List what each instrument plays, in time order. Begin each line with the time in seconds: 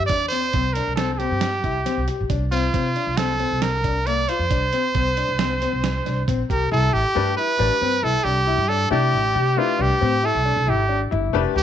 0.07 upright bass E2, grand piano D4, trumpet D5, kick, closed hi-hat
0.28 grand piano C4, trumpet C5, closed hi-hat
0.53 upright bass C2, grand piano C4, kick, closed hi-hat
0.73 grand piano D4, trumpet A#4, closed hi-hat
0.87 upright bass C2
0.96 grand piano C4, trumpet A4, snare, closed hi-hat
1.13 trumpet A4
1.18 grand piano C4, trumpet G4, closed hi-hat
1.31 upright bass G2
1.41 snare, closed hi-hat
1.64 upright bass C2, grand piano E4, kick, closed hi-hat
1.86 grand piano C4, snare, closed hi-hat
1.97 upright bass C2
2.08 grand piano G4, closed hi-hat
2.20 upright bass A1
2.30 upright bass C2, grand piano D4, kick, closed hi-hat
2.52 grand piano C4, trumpet F4, closed hi-hat
2.74 upright bass C3, grand piano C4, kick, closed hi-hat
2.96 grand piano D4, closed hi-hat
3.07 upright bass C2
3.17 grand piano C4, trumpet A4, snare, closed hi-hat
3.40 grand piano C4, closed hi-hat
3.51 upright bass C2
3.62 trumpet A#4, snare, closed hi-hat
3.84 grand piano D4, kick, closed hi-hat
4.06 grand piano A#3, trumpet D5, closed hi-hat
4.29 grand piano F4, trumpet C5, closed hi-hat
4.39 upright bass F2
4.50 upright bass C2, grand piano D4, kick, closed hi-hat
4.73 grand piano C4, closed hi-hat
4.95 upright bass C2, grand piano C4, kick, closed hi-hat
5.17 grand piano D4, closed hi-hat
5.29 upright bass C2
5.39 grand piano C4, snare, closed hi-hat
5.62 grand piano C4, closed hi-hat
5.73 upright bass C2
5.84 snare, closed hi-hat
6.06 upright bass C2, grand piano D4, snare, closed hi-hat
6.28 upright bass A#1, grand piano C4, kick, closed hi-hat
6.50 upright bass C2, grand piano G4, trumpet A#4, kick, closed hi-hat
6.71 upright bass C2, grand piano E4, trumpet A4
6.93 upright bass A1, trumpet G4
7.15 upright bass G2, grand piano A3 D4 G4 B4
7.37 grand piano E4, trumpet B4
7.58 upright bass A1, grand piano A3 D4 G4 B4
7.82 upright bass G2, grand piano C4
8.03 upright bass C2, grand piano E4, trumpet A4
8.24 upright bass C2, grand piano D4, trumpet G4
8.47 grand piano E4
8.58 upright bass G2
8.69 grand piano D4, trumpet A4
8.91 upright bass C3, grand piano A3 D4 E4 G4 D5, trumpet G4
9.13 upright bass A1
9.35 upright bass C3, grand piano G4
9.57 grand piano A3 D4 E4 G4 B4, trumpet F4
9.79 upright bass C2, grand piano D4, trumpet G4
10.01 upright bass A2, grand piano C4
10.23 grand piano E4, trumpet A4
10.35 upright bass C2
10.45 grand piano D4
10.56 upright bass C2
10.67 upright bass G#1, grand piano E4, trumpet G4
10.89 grand piano D4
11.11 upright bass G1, grand piano E4
11.33 upright bass F1, grand piano A3 D4 G4 B4
11.55 upright bass D2, grand piano G4, trumpet G4